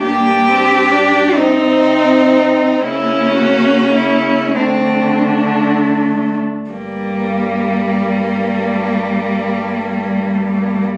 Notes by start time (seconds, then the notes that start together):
0.03 G2 A#3 D4 G4
0.48 C4
0.92 D4
1.36 C3 C4 D#4
2.81 C#3 A#3 C#4 E4
3.35 F#4
3.92 E4
4.55 D3 A3 C4 D4
6.70 G2 G3 A#3